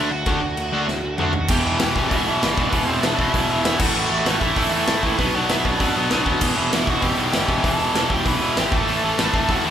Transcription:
Already playing: lead electric guitar E4 E5
0.11 picked electric bass D2, lead electric guitar F#4 F#5
0.26 picked electric bass D2, distorted electric guitar D3 A3 D4, kick, crash
0.42 picked electric bass D2
0.57 picked electric bass D2, crash
0.72 picked electric bass D2, distorted electric guitar D3 A3 D4
0.88 picked electric bass D2, snare
1.03 picked electric bass D2
1.18 picked electric bass D2, distorted electric guitar D3 A3 D4, lead electric guitar F#4 F#5, mid tom
1.33 picked electric bass D#2, floor tom
1.48 picked electric bass E1, distorted electric guitar E2 B2 E3, lead electric guitar G4 G5, kick, crash
1.65 picked electric bass E1, distorted electric guitar E2 B2 E3
1.79 picked electric bass E1, distorted electric guitar E2 B2 E3, snare, open hi-hat
1.96 picked electric bass E1, distorted electric guitar E2 B2 E3, kick
2.08 picked electric bass E1, distorted electric guitar E2 B2 E3, lead electric guitar E4 E5, kick, open hi-hat
2.26 picked electric bass B1, distorted electric guitar E2 B2 E3
2.42 picked electric bass G1, distorted electric guitar E2 B2 E3, snare, open hi-hat
2.53 lead electric guitar D5
2.57 picked electric bass E1, distorted electric guitar E2 B2 E3, kick
2.70 picked electric bass E1, distorted electric guitar E2 B2, lead electric guitar B3 B4, kick, open hi-hat
2.74 distorted electric guitar E3
2.85 picked electric bass E1, distorted electric guitar E3, lead electric guitar C4 C5
2.89 distorted electric guitar E2 B2
3.00 picked electric bass E1, distorted electric guitar E2 B2, lead electric guitar D4 D5, snare, open hi-hat
3.05 distorted electric guitar E3
3.17 picked electric bass E1, distorted electric guitar B2 E3, lead electric guitar E4 E5, kick
3.21 distorted electric guitar E2
3.34 picked electric bass B1, distorted electric guitar E2 B2 E3, kick, open hi-hat
3.49 picked electric bass E1, distorted electric guitar E2 B2 E3
3.63 picked electric bass E1, distorted electric guitar E2 B2 E3, lead electric guitar E4 E5, snare, open hi-hat
3.78 picked electric bass A1, distorted electric guitar A2 E3 A3, lead electric guitar F#4 F#5, kick, crash
3.94 picked electric bass A1, distorted electric guitar A2 E3 A3
4.10 picked electric bass A1, distorted electric guitar A2 E3 A3
4.25 picked electric bass A1, distorted electric guitar A2 E3 A3, snare, open hi-hat
4.39 picked electric bass A1, distorted electric guitar A2 E3 A3, lead electric guitar E4 E5, kick
4.56 picked electric bass A1, distorted electric guitar A2 E3 A3, kick, open hi-hat
4.71 picked electric bass E2, distorted electric guitar A2 E3 A3
4.86 picked electric bass C2, distorted electric guitar A2 E3 A3, snare, open hi-hat
5.02 picked electric bass A1, distorted electric guitar A2 E3 A3, kick
5.18 picked electric bass B1, distorted electric guitar B2 F#3 B3, lead electric guitar B3 B4, kick, open hi-hat
5.34 picked electric bass B1, distorted electric guitar B2 F#3 B3, lead electric guitar D5
5.38 lead electric guitar D4
5.49 picked electric bass B1, distorted electric guitar B2 F#3 B3, lead electric guitar E4 E5, snare, open hi-hat
5.65 picked electric bass B1, distorted electric guitar B2 F#3 B3, lead electric guitar D4 D5, kick
5.80 picked electric bass F#2, distorted electric guitar B2 F#3 B3, kick, open hi-hat
5.96 picked electric bass B1, distorted electric guitar B2 F#3 B3
6.10 picked electric bass B1, distorted electric guitar B2 F#3 B3, snare, open hi-hat
6.25 picked electric bass D2, distorted electric guitar B2 F#3 B3, kick
6.41 picked electric bass E1, distorted electric guitar E2 B2 E3, kick, crash
6.56 picked electric bass E1, distorted electric guitar E2 B2 E3
6.71 picked electric bass E1, distorted electric guitar E2 B2 E3, snare, open hi-hat
6.75 lead electric guitar E4 E5
6.86 picked electric bass E1, distorted electric guitar E2 B2 E3, lead electric guitar F#4 F#5, kick
7.01 picked electric bass E1, distorted electric guitar E2 B2 E3, lead electric guitar G4, kick, open hi-hat
7.06 lead electric guitar G5
7.17 picked electric bass B1, distorted electric guitar E2 B2 E3, lead electric guitar G4 G5
7.32 picked electric bass G1, distorted electric guitar E2 B2 E3, snare, open hi-hat
7.47 picked electric bass E1, distorted electric guitar E2 B2 E3, kick
7.63 picked electric bass E1, distorted electric guitar E2 B2 E3, lead electric guitar A4 A5, kick, open hi-hat
7.78 picked electric bass E1, distorted electric guitar E2 B2 E3
7.94 picked electric bass E1, distorted electric guitar E2 B2 E3, snare, open hi-hat
8.10 picked electric bass E1, distorted electric guitar E2 B2 E3, lead electric guitar G4, kick
8.14 lead electric guitar G5
8.25 picked electric bass B1, distorted electric guitar E2 B2 E3, lead electric guitar B4 B5, kick, open hi-hat
8.40 picked electric bass E1, distorted electric guitar E2 B2 E3
8.56 picked electric bass G#1, distorted electric guitar E2 B2 E3, lead electric guitar G4 G5, snare, open hi-hat
8.72 picked electric bass A1, distorted electric guitar A2 E3 A3, lead electric guitar A4 A5, kick
8.87 picked electric bass A1, distorted electric guitar A2 E3 A3, open hi-hat
9.03 picked electric bass A1, distorted electric guitar A2 E3 A3
9.18 picked electric bass A1, distorted electric guitar A2 E3 A3, snare, open hi-hat
9.33 picked electric bass A1, distorted electric guitar A2 E3 A3, kick
9.49 picked electric bass A1, distorted electric guitar A2 E3 A3, lead electric guitar F#4 F#5, kick, open hi-hat
9.64 picked electric bass E2, distorted electric guitar A2 E3 A3, lead electric guitar E4 E5

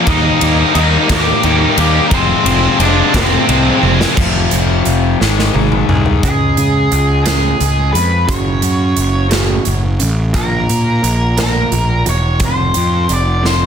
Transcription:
Already playing: tonewheel organ A#4 A#5
0.05 picked electric bass D#2, overdriven electric guitar D#3 G3 A#3, lead electric guitar D#4 D#5, tonewheel organ G4 D#5, kick, ride
0.10 overdriven electric guitar D#4
0.40 picked electric bass D#2, overdriven electric guitar G3 A#3 D#4, ride
0.75 picked electric bass D#2, overdriven electric guitar D#3 G3 A#3 D#4, lead electric guitar D#4, ride
0.79 lead electric guitar D#5
1.08 picked electric bass D#2, overdriven electric guitar A#3 D#4, lead electric guitar G5, kick, snare, ride
1.12 distorted electric guitar D#3, overdriven electric guitar G3, lead electric guitar G4
1.42 picked electric bass D#2, overdriven electric guitar D#3 G3 A#3 D#4, ride
1.64 lead electric guitar F5
1.76 picked electric bass D#2, overdriven electric guitar A#3 D#4, lead electric guitar G4 G5, ride
1.80 overdriven electric guitar G3
2.08 picked electric bass F1, overdriven electric guitar F2 C3 F3, tonewheel organ F4 C5 G#5, lead electric guitar A#4, kick, ride
2.12 overdriven electric guitar G#3 C4, lead electric guitar C4 C5, tonewheel organ G#4
2.44 picked electric bass F1, overdriven electric guitar F3 G#3 C4, ride
2.78 picked electric bass F1, overdriven electric guitar C3 F3 G#3 C4, lead electric guitar D4 D5, ride
3.13 picked electric bass F1, distorted electric guitar F2 C3, overdriven electric guitar F3 G#3 C4, lead electric guitar C5, kick, snare, ride
3.18 lead electric guitar C4
3.47 picked electric bass C2, overdriven electric guitar C3 F3 G#3 C4, ride
3.82 picked electric bass F1, overdriven electric guitar F3 G#3 C4, high tom
4.01 snare
4.16 picked electric bass F1, overdriven electric guitar F2 C3, clean electric guitar F3, kick, crash
4.20 overdriven electric guitar F3
4.51 picked electric bass F1, clean electric guitar C4, closed hi-hat
4.85 picked electric bass F1, clean electric guitar F3, closed hi-hat
5.19 picked electric bass G#1, clean electric guitar G#2, overdriven electric guitar G#2 D#3, snare
5.24 overdriven electric guitar G#3
5.39 snare
5.54 picked electric bass G#1, clean electric guitar D#4, high tom
5.72 mid tom
5.89 picked electric bass C2, clean electric guitar G#4, mid tom
6.06 floor tom
6.23 picked electric bass C#2, clean electric guitar C#3 G#3 C#4, lead electric guitar G#4, kick, closed hi-hat
6.57 picked electric bass C#3, closed hi-hat
6.92 picked electric bass C#2, closed hi-hat
7.24 clean electric guitar C#3 G#3 C#4, lead electric guitar G#4, snare, closed hi-hat
7.59 picked electric bass C#2, clean electric guitar C#3 G#3, closed hi-hat
7.92 picked electric bass F2, clean electric guitar C#3 G#3, lead electric guitar B4, closed hi-hat
8.25 picked electric bass F#1, clean electric guitar F#2 C#3 F#3, lead electric guitar C#5, kick, closed hi-hat
8.62 picked electric bass F#2, closed hi-hat
8.97 picked electric bass F#1, closed hi-hat
9.29 clean electric guitar F#2 C#3 F#3, snare, closed hi-hat
9.65 picked electric bass F#1, clean electric guitar F#2 C#3, closed hi-hat
10.00 picked electric bass A1, clean electric guitar F#2 C#3, closed hi-hat
10.33 picked electric bass A#1, clean electric guitar A#2 F3 A#3, lead electric guitar A#4, kick, closed hi-hat
10.69 picked electric bass A#2, closed hi-hat
11.03 picked electric bass A#1, closed hi-hat
11.37 clean electric guitar A#2 F3 A#3, lead electric guitar A#4, snare, closed hi-hat
11.71 picked electric bass A#1, clean electric guitar A#2 F3, closed hi-hat
12.06 picked electric bass E1, clean electric guitar A#2 F3, lead electric guitar C#5, closed hi-hat
12.40 picked electric bass F1, clean electric guitar F2 C3 F3, kick, closed hi-hat
12.45 lead electric guitar C5
12.74 picked electric bass F2, closed hi-hat
13.09 picked electric bass F1, lead electric guitar D5, closed hi-hat
13.43 clean electric guitar F2 C3 F3, lead electric guitar C5, snare

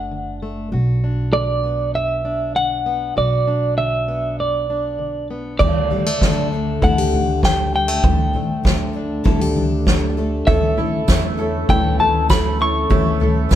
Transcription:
Already playing: upright bass F#1, steel-string acoustic guitar A3 D4 F#4, clean electric guitar F#5
0.11 steel-string acoustic guitar D3
0.42 steel-string acoustic guitar A3
0.72 upright bass B1, steel-string acoustic guitar B2 F#4
1.04 steel-string acoustic guitar D4
1.33 steel-string acoustic guitar D3, clean electric guitar D5
1.64 steel-string acoustic guitar B3
1.94 steel-string acoustic guitar F#2, clean electric guitar E5
2.25 steel-string acoustic guitar D4
2.55 steel-string acoustic guitar D3, clean electric guitar F#5
2.86 steel-string acoustic guitar B3
3.16 upright bass B1, steel-string acoustic guitar B2 F#4, clean electric guitar D5
3.47 steel-string acoustic guitar D4
3.77 steel-string acoustic guitar D3, clean electric guitar E5
4.08 steel-string acoustic guitar B3
4.39 steel-string acoustic guitar F#2, clean electric guitar D5
4.70 steel-string acoustic guitar D4
4.99 steel-string acoustic guitar D3
5.31 steel-string acoustic guitar B3
5.59 steel-string acoustic guitar D2 D3 G3 A3 D4 A4, upright bass D2, clean electric guitar D5, kick, floor tom, crash
5.90 steel-string acoustic guitar G3 A3 D4 A4, floor tom
6.06 steel-string acoustic guitar A3
6.21 upright bass D2, steel-string acoustic guitar D3 G3 A3 D4 A4, kick, snare
6.52 steel-string acoustic guitar A3 D4 A4
6.82 upright bass D2, steel-string acoustic guitar D3 G3 A3 D4 E4 A4, clean electric guitar F#5, kick, floor tom
6.98 steel-string acoustic guitar G4
7.12 steel-string acoustic guitar D2 A3 D4 A4, floor tom
7.42 steel-string acoustic guitar G3 A3 A4, clean electric guitar G5, kick, snare
7.73 steel-string acoustic guitar G3 A3 D4 A4, clean electric guitar G5
7.88 steel-string acoustic guitar A3
8.03 upright bass D2, steel-string acoustic guitar D2 D3 G3 A3 D4 A4, kick, floor tom
8.33 steel-string acoustic guitar A3 D4 A4, floor tom
8.63 upright bass D2, steel-string acoustic guitar D3 G3 A3 D4 A4, kick, snare
8.93 steel-string acoustic guitar A3 D4 A4
9.24 upright bass D2, steel-string acoustic guitar D3 G3 A3 D4 E4 A4, kick, floor tom
9.41 steel-string acoustic guitar G4
9.55 steel-string acoustic guitar D2 A3 D4 A4, floor tom
9.85 steel-string acoustic guitar G3 A3 D4 A4, kick, snare
10.17 steel-string acoustic guitar A3 D4 A4
10.46 upright piano D2 D3 A3 C#4 E4 A4 C#5, upright bass D2, steel-string acoustic guitar D3 E3 A3 C#4 A4, brass ensemble E3 C#4 A4, clean electric guitar E5, kick, floor tom
10.77 upright piano A3 C#4 E4 C#5, steel-string acoustic guitar A3 C#4 A4, floor tom
11.07 upright bass E2, steel-string acoustic guitar E3 A3 C#4 A4, upright piano A3 C#4 E4 C#5, kick, snare, tambourine
11.37 upright piano A3 C#4 E4 A4 C#5, steel-string acoustic guitar A3 C#4 A4
11.68 upright bass D2, steel-string acoustic guitar D3 E3 A3 C#4 A4, upright piano A3 C#4 E4 C#5, clean electric guitar G5, kick, floor tom
11.97 upright piano A3 C#4 E4 B4, steel-string acoustic guitar A3 C#4 A4, clean electric guitar A5, floor tom
12.28 steel-string acoustic guitar E3 A3 C#4 A4, upright piano A3 C#4 E4 F#4 A4, clean electric guitar B5, kick, snare, tambourine
12.58 upright piano A3 C#4 E4 C#5, steel-string acoustic guitar A3 C#4 A4, clean electric guitar C#6
12.89 upright piano D2 D3 A3 C#4 E4 C#5, upright bass D2, steel-string acoustic guitar D3 E3 A3 C#4 A4, kick, floor tom
13.20 upright piano A3 C#4 E4 A4 C#5, steel-string acoustic guitar A3 C#4 A4, floor tom
13.49 upright bass E2, steel-string acoustic guitar E3 A3 C#4 A4, upright piano A3 C#4 E4 C#5, kick, snare, tambourine

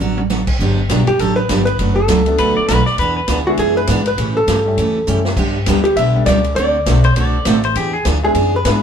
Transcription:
Already playing: hollow-body jazz guitar D5
0.00 upright bass A1, steel-string acoustic guitar D3 F#3 B3 F#4 A4
0.18 high tom
0.30 steel-string acoustic guitar D3 F#3 B3 F#4 A4, snare
0.47 kick, crash
0.59 upright bass G1, steel-string acoustic guitar D3 F#3 B3 D4 G4, kick
0.89 upright bass B1, steel-string acoustic guitar D3 F#3 B3 D4 G4, upright piano G3 B3 D4 F#4 G4, kick, snare, hi-hat pedal, ride
1.07 hollow-body jazz guitar G4, muted upright bass stroke, ride
1.19 upright bass A1, steel-string acoustic guitar D3 F#3 B3 D4 G4, hollow-body jazz guitar A4, kick, ride
1.36 hollow-body jazz guitar B4
1.49 upright bass G1, steel-string acoustic guitar D3 F#3 B3 D4 G4, upright piano G3 B3 D4 F#4 G4, kick, snare, hi-hat pedal, ride
1.65 hollow-body jazz guitar B4, ride
1.79 upright bass F#1, steel-string acoustic guitar B2 F#3 A3 D4 F#4, kick, ride
1.96 hollow-body jazz guitar A4
2.08 upright bass C#2, steel-string acoustic guitar B2 F#3 A3 D4 F#4, kick, snare, hi-hat pedal, ride
2.26 upright piano A3 B3 D4 F#4 A4, ride
2.38 upright bass D2, steel-string acoustic guitar B2 F#3 A3 D4 F#4, pedal steel guitar B4, kick, ride
2.57 pedal steel guitar D5, muted upright bass stroke
2.68 upright bass B1, steel-string acoustic guitar B2 F#3 A3 D4 F#4, pedal steel guitar B4, kick, snare, hi-hat pedal, ride
2.86 pedal steel guitar D5, snare
2.98 upright bass E2, steel-string acoustic guitar E3 B3 D4 G#4, pedal steel guitar B4, kick, ride
3.17 pedal steel guitar B4
3.28 upright bass D2, steel-string acoustic guitar E3 B3 D4 G#4, kick, snare, hi-hat pedal, ride
3.47 upright piano G#3 B3 D4 E4 G#4, hollow-body jazz guitar F#4
3.57 upright bass F#2, steel-string acoustic guitar E3 B3 D4 G#4, hollow-body jazz guitar G#4, kick, ride
3.77 hollow-body jazz guitar B4
3.87 upright bass G#2, steel-string acoustic guitar E3 B3 D4 G#4, kick, snare, hi-hat pedal, ride
4.06 hollow-body jazz guitar B4, ride
4.17 upright bass A2, steel-string acoustic guitar C#3 E3 A3 C#4 G4, kick, ride
4.37 hollow-body jazz guitar A4
4.47 upright bass G2, steel-string acoustic guitar C#3 E3 A3 C#4 G4, kick, snare, hi-hat pedal, ride
4.66 upright piano G3 A3 C#4 E4 G4
4.77 upright bass E2, steel-string acoustic guitar C#3 E3 A3 C#4 G4, kick, ride
5.07 upright bass F#2, steel-string acoustic guitar C#3 E3 A3 C#4 G4, upright piano G3 A3 C#4 E4 G4, hi-hat pedal
5.25 snare
5.37 upright bass G2, steel-string acoustic guitar D3 G3 B3 D4 G4, kick, crash
5.66 upright bass D2, steel-string acoustic guitar D3 G3 B3 D4 G4, upright piano G3 B3 D4 G4 B4, kick, snare, hi-hat pedal, ride
5.84 hollow-body jazz guitar G4, ride
5.96 upright bass B1, steel-string acoustic guitar D3 G3 B3 D4 G4, hollow-body jazz guitar E5, kick, ride
6.15 upright piano G3 B3 D4 G4 A4
6.26 upright bass C#2, steel-string acoustic guitar D3 G3 B3 D4 G4, hollow-body jazz guitar D5, kick, snare, hi-hat pedal, ride
6.44 ride
6.56 upright bass D2, steel-string acoustic guitar D3 A3 C4 F#4 A4, hollow-body jazz guitar D5, kick, ride
6.86 upright bass B1, steel-string acoustic guitar D3 A3 C4 F#4 A4, upright piano A3 C4 D4 F#4 A4, kick, snare, hi-hat pedal, ride
7.04 pedal steel guitar C5, ride
7.16 upright bass C2, steel-string acoustic guitar D3 A3 C4 F#4 A4, hollow-body jazz guitar C5, pedal steel guitar D5, kick, ride
7.45 upright bass A1, steel-string acoustic guitar D3 A3 C4 F#4 A4, upright piano A3 C4 D4 F#4 A4, kick, snare, hi-hat pedal, ride
7.64 pedal steel guitar C5, ride
7.75 upright bass E2, steel-string acoustic guitar E3 B3 D4 G#4, pedal steel guitar G4, kick, ride
7.93 pedal steel guitar G#4
8.05 upright bass D2, steel-string acoustic guitar E3 B3 D4 G#4, kick, snare, hi-hat pedal, ride
8.23 upright piano G#3 B3 D4 E4 G#4, hollow-body jazz guitar G#4
8.35 upright bass F#2, steel-string acoustic guitar E3 B3 D4 G#4, kick, ride
8.56 hollow-body jazz guitar B4
8.65 upright bass G#2, steel-string acoustic guitar E3 B3 D4 G#4, upright piano G#3 B3 D4 E4 G#4, hollow-body jazz guitar B4, kick, snare, hi-hat pedal, ride

